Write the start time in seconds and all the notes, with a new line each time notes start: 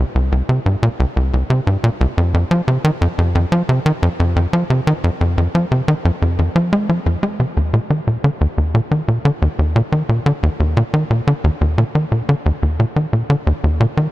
0.15 C2
0.32 C2
0.49 C3
0.66 G2
0.83 A#2
1.00 C2
1.16 C2
1.33 C2
1.50 C3
1.67 G2
1.84 A#2
2.01 C2
2.18 F2
2.34 F2
2.51 F3
2.68 C3
2.84 D#3
3.01 F2
3.18 F2
3.35 F2
3.52 F3
3.69 C3
3.86 D#3
4.03 F2
4.20 F2
4.36 F2
4.53 F3
4.70 C3
4.87 D#3
5.04 F2
5.21 F2
5.38 F2
5.55 F3
5.72 C3
5.88 D#3
6.05 F2
6.22 F2
6.39 F2
6.56 F3
6.73 G#3
6.89 F3
7.06 F2
7.23 G#3
7.40 C3
7.57 D#2
7.74 A#2
7.90 D#3
8.07 A#2
8.24 D3
8.41 D#2
8.58 D#2
8.75 A#2
8.91 D#3
9.08 A#2
9.25 D3
9.42 D#2
9.59 D#2
9.76 A#2
9.92 D#3
10.09 A#2
10.26 D3
10.43 D#2
10.60 D#2
10.77 A#2
10.94 D#3
11.10 A#2
11.27 D3
11.44 D#2
11.61 D#2
11.78 A#2
11.95 D#3
12.12 A#2
12.29 D3
12.46 D#2
12.63 D#2
12.80 A#2
12.96 D#3
13.13 A#2
13.30 D3
13.47 D#2
13.64 D#2
13.80 A#2
13.97 D#3